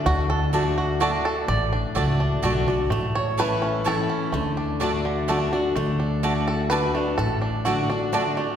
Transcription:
<<
  \new Staff \with { instrumentName = "Mandolin" } { \time 3/4 \key d \major \tempo 4 = 126 r4 <a fis' d'' a''>8 r8 <a fis' d'' a''>8 r8 | r4 <a fis' d'' a''>8 r8 <a fis' d'' a''>8 r8 | r4 <a e' cis'' a''>8 r8 <a e' cis'' a''>8 r8 | r4 <a fis' d'' a''>8 r8 <a fis' d'' a''>8 r8 |
r4 <a fis' d'' a''>8 r8 <a fis' d'' a''>8 r8 | r4 <a fis' d'' a''>8 r8 <a fis' d'' a''>8 r8 | }
  \new Staff \with { instrumentName = "Five-string banjo" } { \time 3/4 \key d \major << { fis'8 a'4 fis'8 fis'8 a'8 | d''2~ d''8 r8 | r8 cis''8 b'4 a'4~ | a'4. r4. |
r4. a'8 b'4 | a'4 fis'4 r4 | } \\ { d'8 r8 d'4. r8 | r8 d'8 d'8 d'8 a8 d'8 | a4. cis'4 cis'8 | a8 d'8 d'8 d8 a8 d'8 |
a8 d'8 d'4. a8~ | a8 d'4 d'8 d'8 a8 | } >> }
  \new Staff \with { instrumentName = "Steel-string acoustic guitar" } { \time 3/4 \key d \major << { r4 <d a d' fis'>4 <d a d' fis'>4 | r4 <a d' fis'>4 <d a d' fis'>8 <d' fis'>8 | r4 <e a cis' e'>4 <e a cis' e'>4 | r4 <d a d' fis'>4 <d a d' fis'>8 <d' fis'>8 |
r4 <d a d' fis'>4 <d a d' fis'>8 <d' fis'>8 | r4 <d a d' fis'>8 <d' fis'>8 <d a d' fis'>8 <d' fis'>8 | } \\ { d2 r4 | a,2 r4 | a,2 r4 | d2 r4 |
d2 r4 | a,2 r4 | } >> }
  \new Staff \with { instrumentName = "Upright bass" } { \clef bass \time 3/4 \key d \major d,2. | a,,4 cis,4 b,,4 | a,,2. | d,2. |
d,2. | a,,2. | }
>>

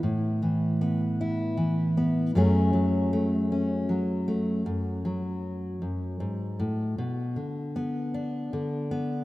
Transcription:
\new Staff \with { instrumentName = "Steel-string acoustic guitar" } { \clef bass \time 6/8 \key fis \minor \tempo 4. = 52 << { e'4 b8 e'4 b8 | <fis a cis' gis'>4 a8 cis'4 a8 | r2. | r4 b8 d'4 b8 | } \\ { a,8 e4. e4 | fis,8 fis4. fis4 | fis,8 fis4 fis,8 gis,8 a,8 | b,8 d4. d4 | } >> }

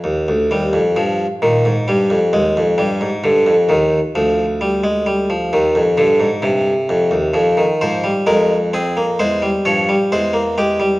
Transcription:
<<
  \new Staff \with { instrumentName = "Harpsichord" } { \time 4/4 \key f \minor \tempo 4 = 66 r1 | r1 | r8 c''8 bes'8 aes'8 c''8 des''8 c''8 g'8 | }
  \new Staff \with { instrumentName = "Harpsichord" } { \clef bass \time 4/4 \key f \minor << { r8 g8 f8 ees8 g8 aes8 g8 d8 | ees8 f8 g16 aes16 g16 f16 ees8 d8 c4 | f16 ees16 f16 g16 aes8 c'16 bes16 aes16 g16 f16 g16 aes16 bes16 aes16 g16 | } \\ { ees,16 d,16 ees,16 f,16 g,8 bes,16 aes,16 g,16 f,16 ees,16 f,16 g,16 aes,16 g,16 f,16 | ees,8 d,4. ees,16 f,16 g,16 aes,16 g,8 f,16 ees,16 | f,8 aes,8 f,4 e,8 g,8 e,4 | } >> }
>>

